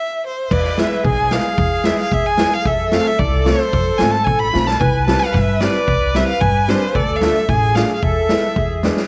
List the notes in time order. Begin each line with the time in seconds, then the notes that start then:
Already playing: E5
0.27 C5
0.50 E2 B4 D5, kick, crash
0.64 snare
0.77 G#3 B3 E4 E5, snare
1.04 B1 G#4 G#5, kick
1.31 G#3 B3 E4 F5, snare
1.58 E2, kick
1.84 G#3 B3 E4 E5, snare
1.98 F5, snare
2.12 E2 E5, kick
2.26 G#5
2.37 G#3 B3 E4, snare
2.54 F5
2.64 F2 A4 E5, kick
2.91 A3 C4 F4 F5, snare
3.07 E5
3.19 C2 D5, kick
3.45 A3 C4 F4 C5, snare
3.73 F2, kick
3.98 G#1 A3 C4 F4 G#5, snare
4.11 A5
4.25 A1 G#5, kick
4.39 B5
4.53 B1 A3 C4 F4, snare
4.67 A5, snare
4.80 C2 B4 G#5, kick
5.07 G3 C4 E4 A5, snare
5.20 F5, snare
5.33 G2 E5, kick, snare
5.61 G3 C4 E4 D5, snare
5.88 C2, kick
6.15 G3 C4 E4 E5, snare
6.27 F5
6.41 G2 G#5, kick
6.68 G3 C4 D4 C5, snare
6.94 D2 A4 D5, kick
7.16 F5
7.21 A3 D4 F4 E5, snare
7.49 A1 G#4 G#5, kick
7.75 A3 D4 F4 F5, snare
7.94 F5
8.03 E2 A4 E5, kick
8.29 G#3 B3 E4, snare
8.56 E2 G#4, kick
8.83 G#3 B3 D4, snare
8.97 snare